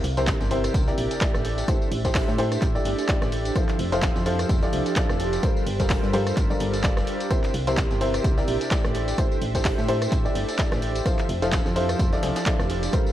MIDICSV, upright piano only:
0, 0, Header, 1, 2, 480
1, 0, Start_track
1, 0, Tempo, 468750
1, 1721, Time_signature, 4, 2, 24, 8
1, 13437, End_track
2, 0, Start_track
2, 0, Title_t, "Upright piano"
2, 0, Program_c, 0, 0
2, 176, Note_on_c, 0, 48, 90
2, 176, Note_on_c, 0, 64, 77
2, 176, Note_on_c, 0, 67, 79
2, 176, Note_on_c, 0, 70, 83
2, 176, Note_on_c, 0, 72, 96
2, 496, Note_off_c, 0, 48, 0
2, 496, Note_off_c, 0, 64, 0
2, 496, Note_off_c, 0, 67, 0
2, 496, Note_off_c, 0, 70, 0
2, 496, Note_off_c, 0, 72, 0
2, 521, Note_on_c, 0, 48, 90
2, 521, Note_on_c, 0, 64, 87
2, 521, Note_on_c, 0, 67, 82
2, 521, Note_on_c, 0, 70, 80
2, 521, Note_on_c, 0, 72, 101
2, 864, Note_off_c, 0, 48, 0
2, 864, Note_off_c, 0, 64, 0
2, 864, Note_off_c, 0, 67, 0
2, 864, Note_off_c, 0, 70, 0
2, 864, Note_off_c, 0, 72, 0
2, 896, Note_on_c, 0, 48, 79
2, 897, Note_on_c, 0, 64, 76
2, 897, Note_on_c, 0, 67, 76
2, 897, Note_on_c, 0, 70, 76
2, 897, Note_on_c, 0, 74, 86
2, 1216, Note_off_c, 0, 48, 0
2, 1216, Note_off_c, 0, 64, 0
2, 1216, Note_off_c, 0, 67, 0
2, 1216, Note_off_c, 0, 70, 0
2, 1216, Note_off_c, 0, 74, 0
2, 1241, Note_on_c, 0, 57, 83
2, 1241, Note_on_c, 0, 64, 76
2, 1241, Note_on_c, 0, 67, 81
2, 1241, Note_on_c, 0, 69, 81
2, 1241, Note_on_c, 0, 74, 90
2, 1696, Note_off_c, 0, 57, 0
2, 1696, Note_off_c, 0, 64, 0
2, 1696, Note_off_c, 0, 67, 0
2, 1696, Note_off_c, 0, 69, 0
2, 1696, Note_off_c, 0, 74, 0
2, 1721, Note_on_c, 0, 57, 80
2, 1722, Note_on_c, 0, 64, 75
2, 1722, Note_on_c, 0, 67, 76
2, 1722, Note_on_c, 0, 69, 80
2, 1722, Note_on_c, 0, 72, 90
2, 1924, Note_off_c, 0, 57, 0
2, 1924, Note_off_c, 0, 64, 0
2, 1924, Note_off_c, 0, 67, 0
2, 1924, Note_off_c, 0, 69, 0
2, 1924, Note_off_c, 0, 72, 0
2, 2097, Note_on_c, 0, 57, 89
2, 2097, Note_on_c, 0, 64, 77
2, 2097, Note_on_c, 0, 67, 83
2, 2097, Note_on_c, 0, 69, 83
2, 2097, Note_on_c, 0, 72, 95
2, 2416, Note_off_c, 0, 57, 0
2, 2416, Note_off_c, 0, 64, 0
2, 2416, Note_off_c, 0, 67, 0
2, 2416, Note_off_c, 0, 69, 0
2, 2416, Note_off_c, 0, 72, 0
2, 2442, Note_on_c, 0, 57, 89
2, 2442, Note_on_c, 0, 64, 85
2, 2442, Note_on_c, 0, 67, 90
2, 2442, Note_on_c, 0, 69, 84
2, 2442, Note_on_c, 0, 72, 102
2, 2784, Note_off_c, 0, 57, 0
2, 2784, Note_off_c, 0, 64, 0
2, 2784, Note_off_c, 0, 67, 0
2, 2784, Note_off_c, 0, 69, 0
2, 2784, Note_off_c, 0, 72, 0
2, 2817, Note_on_c, 0, 57, 87
2, 2817, Note_on_c, 0, 64, 74
2, 2817, Note_on_c, 0, 67, 73
2, 2817, Note_on_c, 0, 69, 77
2, 2817, Note_on_c, 0, 74, 95
2, 3136, Note_off_c, 0, 57, 0
2, 3136, Note_off_c, 0, 64, 0
2, 3136, Note_off_c, 0, 67, 0
2, 3136, Note_off_c, 0, 69, 0
2, 3136, Note_off_c, 0, 74, 0
2, 3161, Note_on_c, 0, 57, 81
2, 3161, Note_on_c, 0, 64, 79
2, 3161, Note_on_c, 0, 67, 74
2, 3161, Note_on_c, 0, 69, 74
2, 3161, Note_on_c, 0, 74, 94
2, 3616, Note_off_c, 0, 57, 0
2, 3616, Note_off_c, 0, 64, 0
2, 3616, Note_off_c, 0, 67, 0
2, 3616, Note_off_c, 0, 69, 0
2, 3616, Note_off_c, 0, 74, 0
2, 3641, Note_on_c, 0, 53, 88
2, 3641, Note_on_c, 0, 64, 77
2, 3641, Note_on_c, 0, 65, 75
2, 3641, Note_on_c, 0, 69, 78
2, 3641, Note_on_c, 0, 72, 92
2, 3844, Note_off_c, 0, 53, 0
2, 3844, Note_off_c, 0, 64, 0
2, 3844, Note_off_c, 0, 65, 0
2, 3844, Note_off_c, 0, 69, 0
2, 3844, Note_off_c, 0, 72, 0
2, 4017, Note_on_c, 0, 53, 91
2, 4017, Note_on_c, 0, 64, 83
2, 4017, Note_on_c, 0, 65, 87
2, 4017, Note_on_c, 0, 69, 84
2, 4017, Note_on_c, 0, 72, 101
2, 4336, Note_off_c, 0, 53, 0
2, 4336, Note_off_c, 0, 64, 0
2, 4336, Note_off_c, 0, 65, 0
2, 4336, Note_off_c, 0, 69, 0
2, 4336, Note_off_c, 0, 72, 0
2, 4361, Note_on_c, 0, 64, 83
2, 4361, Note_on_c, 0, 69, 85
2, 4362, Note_on_c, 0, 53, 94
2, 4362, Note_on_c, 0, 65, 85
2, 4362, Note_on_c, 0, 72, 97
2, 4704, Note_off_c, 0, 53, 0
2, 4704, Note_off_c, 0, 64, 0
2, 4704, Note_off_c, 0, 65, 0
2, 4704, Note_off_c, 0, 69, 0
2, 4704, Note_off_c, 0, 72, 0
2, 4737, Note_on_c, 0, 53, 85
2, 4737, Note_on_c, 0, 64, 76
2, 4737, Note_on_c, 0, 65, 77
2, 4737, Note_on_c, 0, 69, 80
2, 4737, Note_on_c, 0, 74, 97
2, 5056, Note_off_c, 0, 53, 0
2, 5056, Note_off_c, 0, 64, 0
2, 5056, Note_off_c, 0, 65, 0
2, 5056, Note_off_c, 0, 69, 0
2, 5056, Note_off_c, 0, 74, 0
2, 5081, Note_on_c, 0, 53, 83
2, 5081, Note_on_c, 0, 64, 78
2, 5081, Note_on_c, 0, 65, 76
2, 5081, Note_on_c, 0, 69, 76
2, 5081, Note_on_c, 0, 74, 89
2, 5536, Note_off_c, 0, 53, 0
2, 5536, Note_off_c, 0, 64, 0
2, 5536, Note_off_c, 0, 65, 0
2, 5536, Note_off_c, 0, 69, 0
2, 5536, Note_off_c, 0, 74, 0
2, 5561, Note_on_c, 0, 55, 86
2, 5561, Note_on_c, 0, 65, 77
2, 5561, Note_on_c, 0, 69, 77
2, 5561, Note_on_c, 0, 70, 74
2, 5561, Note_on_c, 0, 72, 94
2, 5764, Note_off_c, 0, 55, 0
2, 5764, Note_off_c, 0, 65, 0
2, 5764, Note_off_c, 0, 69, 0
2, 5764, Note_off_c, 0, 70, 0
2, 5764, Note_off_c, 0, 72, 0
2, 5937, Note_on_c, 0, 55, 90
2, 5937, Note_on_c, 0, 65, 83
2, 5937, Note_on_c, 0, 69, 76
2, 5937, Note_on_c, 0, 70, 81
2, 5937, Note_on_c, 0, 72, 98
2, 6256, Note_off_c, 0, 55, 0
2, 6256, Note_off_c, 0, 65, 0
2, 6256, Note_off_c, 0, 69, 0
2, 6256, Note_off_c, 0, 70, 0
2, 6256, Note_off_c, 0, 72, 0
2, 6281, Note_on_c, 0, 55, 88
2, 6281, Note_on_c, 0, 65, 86
2, 6281, Note_on_c, 0, 69, 86
2, 6281, Note_on_c, 0, 70, 88
2, 6281, Note_on_c, 0, 72, 104
2, 6624, Note_off_c, 0, 55, 0
2, 6624, Note_off_c, 0, 65, 0
2, 6624, Note_off_c, 0, 69, 0
2, 6624, Note_off_c, 0, 70, 0
2, 6624, Note_off_c, 0, 72, 0
2, 6657, Note_on_c, 0, 55, 78
2, 6657, Note_on_c, 0, 65, 78
2, 6657, Note_on_c, 0, 69, 74
2, 6657, Note_on_c, 0, 70, 76
2, 6657, Note_on_c, 0, 74, 96
2, 6976, Note_off_c, 0, 55, 0
2, 6976, Note_off_c, 0, 65, 0
2, 6976, Note_off_c, 0, 69, 0
2, 6976, Note_off_c, 0, 70, 0
2, 6976, Note_off_c, 0, 74, 0
2, 7001, Note_on_c, 0, 55, 86
2, 7001, Note_on_c, 0, 65, 75
2, 7001, Note_on_c, 0, 69, 76
2, 7001, Note_on_c, 0, 70, 77
2, 7001, Note_on_c, 0, 74, 91
2, 7456, Note_off_c, 0, 55, 0
2, 7456, Note_off_c, 0, 65, 0
2, 7456, Note_off_c, 0, 69, 0
2, 7456, Note_off_c, 0, 70, 0
2, 7456, Note_off_c, 0, 74, 0
2, 7482, Note_on_c, 0, 48, 82
2, 7482, Note_on_c, 0, 64, 74
2, 7482, Note_on_c, 0, 67, 71
2, 7482, Note_on_c, 0, 70, 79
2, 7482, Note_on_c, 0, 72, 90
2, 7684, Note_off_c, 0, 48, 0
2, 7684, Note_off_c, 0, 64, 0
2, 7684, Note_off_c, 0, 67, 0
2, 7684, Note_off_c, 0, 70, 0
2, 7684, Note_off_c, 0, 72, 0
2, 7857, Note_on_c, 0, 48, 90
2, 7857, Note_on_c, 0, 64, 82
2, 7857, Note_on_c, 0, 67, 81
2, 7857, Note_on_c, 0, 70, 81
2, 7857, Note_on_c, 0, 72, 99
2, 8176, Note_off_c, 0, 48, 0
2, 8176, Note_off_c, 0, 64, 0
2, 8176, Note_off_c, 0, 67, 0
2, 8176, Note_off_c, 0, 70, 0
2, 8176, Note_off_c, 0, 72, 0
2, 8202, Note_on_c, 0, 48, 96
2, 8202, Note_on_c, 0, 64, 83
2, 8202, Note_on_c, 0, 67, 84
2, 8202, Note_on_c, 0, 70, 84
2, 8202, Note_on_c, 0, 72, 104
2, 8544, Note_off_c, 0, 48, 0
2, 8544, Note_off_c, 0, 64, 0
2, 8544, Note_off_c, 0, 67, 0
2, 8544, Note_off_c, 0, 70, 0
2, 8544, Note_off_c, 0, 72, 0
2, 8577, Note_on_c, 0, 48, 82
2, 8577, Note_on_c, 0, 64, 77
2, 8577, Note_on_c, 0, 67, 80
2, 8577, Note_on_c, 0, 70, 76
2, 8577, Note_on_c, 0, 74, 89
2, 8896, Note_off_c, 0, 48, 0
2, 8896, Note_off_c, 0, 64, 0
2, 8896, Note_off_c, 0, 67, 0
2, 8896, Note_off_c, 0, 70, 0
2, 8896, Note_off_c, 0, 74, 0
2, 8921, Note_on_c, 0, 57, 85
2, 8921, Note_on_c, 0, 64, 82
2, 8921, Note_on_c, 0, 67, 80
2, 8921, Note_on_c, 0, 69, 77
2, 8921, Note_on_c, 0, 74, 94
2, 9376, Note_off_c, 0, 57, 0
2, 9376, Note_off_c, 0, 64, 0
2, 9376, Note_off_c, 0, 67, 0
2, 9376, Note_off_c, 0, 69, 0
2, 9376, Note_off_c, 0, 74, 0
2, 9401, Note_on_c, 0, 64, 76
2, 9402, Note_on_c, 0, 57, 84
2, 9402, Note_on_c, 0, 67, 75
2, 9402, Note_on_c, 0, 69, 72
2, 9402, Note_on_c, 0, 72, 94
2, 9604, Note_off_c, 0, 57, 0
2, 9604, Note_off_c, 0, 64, 0
2, 9604, Note_off_c, 0, 67, 0
2, 9604, Note_off_c, 0, 69, 0
2, 9604, Note_off_c, 0, 72, 0
2, 9777, Note_on_c, 0, 57, 90
2, 9777, Note_on_c, 0, 64, 79
2, 9777, Note_on_c, 0, 67, 78
2, 9777, Note_on_c, 0, 69, 81
2, 9777, Note_on_c, 0, 72, 93
2, 10096, Note_off_c, 0, 57, 0
2, 10096, Note_off_c, 0, 64, 0
2, 10096, Note_off_c, 0, 67, 0
2, 10096, Note_off_c, 0, 69, 0
2, 10096, Note_off_c, 0, 72, 0
2, 10122, Note_on_c, 0, 57, 92
2, 10122, Note_on_c, 0, 64, 84
2, 10122, Note_on_c, 0, 67, 84
2, 10122, Note_on_c, 0, 69, 82
2, 10122, Note_on_c, 0, 72, 101
2, 10464, Note_off_c, 0, 57, 0
2, 10464, Note_off_c, 0, 64, 0
2, 10464, Note_off_c, 0, 67, 0
2, 10464, Note_off_c, 0, 69, 0
2, 10464, Note_off_c, 0, 72, 0
2, 10497, Note_on_c, 0, 57, 83
2, 10497, Note_on_c, 0, 64, 75
2, 10497, Note_on_c, 0, 67, 72
2, 10497, Note_on_c, 0, 69, 77
2, 10497, Note_on_c, 0, 74, 97
2, 10816, Note_off_c, 0, 57, 0
2, 10816, Note_off_c, 0, 64, 0
2, 10816, Note_off_c, 0, 67, 0
2, 10816, Note_off_c, 0, 69, 0
2, 10816, Note_off_c, 0, 74, 0
2, 10841, Note_on_c, 0, 57, 83
2, 10841, Note_on_c, 0, 64, 79
2, 10841, Note_on_c, 0, 67, 81
2, 10841, Note_on_c, 0, 69, 76
2, 10841, Note_on_c, 0, 74, 96
2, 11296, Note_off_c, 0, 57, 0
2, 11296, Note_off_c, 0, 64, 0
2, 11296, Note_off_c, 0, 67, 0
2, 11296, Note_off_c, 0, 69, 0
2, 11296, Note_off_c, 0, 74, 0
2, 11321, Note_on_c, 0, 53, 79
2, 11321, Note_on_c, 0, 64, 76
2, 11321, Note_on_c, 0, 65, 78
2, 11321, Note_on_c, 0, 69, 76
2, 11321, Note_on_c, 0, 72, 91
2, 11524, Note_off_c, 0, 53, 0
2, 11524, Note_off_c, 0, 64, 0
2, 11524, Note_off_c, 0, 65, 0
2, 11524, Note_off_c, 0, 69, 0
2, 11524, Note_off_c, 0, 72, 0
2, 11697, Note_on_c, 0, 53, 90
2, 11697, Note_on_c, 0, 64, 82
2, 11697, Note_on_c, 0, 65, 87
2, 11697, Note_on_c, 0, 69, 84
2, 11697, Note_on_c, 0, 72, 93
2, 12016, Note_off_c, 0, 53, 0
2, 12016, Note_off_c, 0, 64, 0
2, 12016, Note_off_c, 0, 65, 0
2, 12016, Note_off_c, 0, 69, 0
2, 12016, Note_off_c, 0, 72, 0
2, 12041, Note_on_c, 0, 53, 94
2, 12041, Note_on_c, 0, 64, 85
2, 12041, Note_on_c, 0, 65, 85
2, 12041, Note_on_c, 0, 72, 106
2, 12042, Note_on_c, 0, 69, 85
2, 12384, Note_off_c, 0, 53, 0
2, 12384, Note_off_c, 0, 64, 0
2, 12384, Note_off_c, 0, 65, 0
2, 12384, Note_off_c, 0, 69, 0
2, 12384, Note_off_c, 0, 72, 0
2, 12417, Note_on_c, 0, 53, 86
2, 12417, Note_on_c, 0, 64, 74
2, 12417, Note_on_c, 0, 65, 75
2, 12417, Note_on_c, 0, 69, 79
2, 12417, Note_on_c, 0, 74, 90
2, 12736, Note_off_c, 0, 64, 0
2, 12736, Note_off_c, 0, 65, 0
2, 12736, Note_off_c, 0, 74, 0
2, 12737, Note_off_c, 0, 53, 0
2, 12737, Note_off_c, 0, 69, 0
2, 12761, Note_on_c, 0, 53, 85
2, 12762, Note_on_c, 0, 64, 76
2, 12762, Note_on_c, 0, 65, 78
2, 12762, Note_on_c, 0, 69, 77
2, 12762, Note_on_c, 0, 74, 93
2, 13216, Note_off_c, 0, 53, 0
2, 13216, Note_off_c, 0, 64, 0
2, 13216, Note_off_c, 0, 65, 0
2, 13216, Note_off_c, 0, 69, 0
2, 13216, Note_off_c, 0, 74, 0
2, 13241, Note_on_c, 0, 55, 84
2, 13241, Note_on_c, 0, 72, 90
2, 13242, Note_on_c, 0, 65, 78
2, 13242, Note_on_c, 0, 69, 80
2, 13242, Note_on_c, 0, 70, 78
2, 13437, Note_off_c, 0, 55, 0
2, 13437, Note_off_c, 0, 65, 0
2, 13437, Note_off_c, 0, 69, 0
2, 13437, Note_off_c, 0, 70, 0
2, 13437, Note_off_c, 0, 72, 0
2, 13437, End_track
0, 0, End_of_file